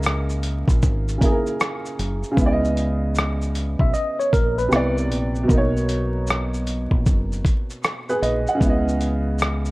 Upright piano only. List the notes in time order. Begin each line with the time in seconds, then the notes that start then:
Already playing: C#3 A#3 E4 D#5
1.18 C#3 A#3
1.23 E4 G#4
1.32 A#4
2.32 C#3
2.36 B3
2.41 E4
2.46 D5
2.52 D#5
4.69 C3 B3
4.73 E4 D5
5.43 B2
5.48 A#3
5.53 D#4
5.57 C#5
8.09 G#4 B4
8.22 B4 D#5
8.49 D#5 F#5
8.55 C#3
8.60 B3
8.64 E4
8.69 D#5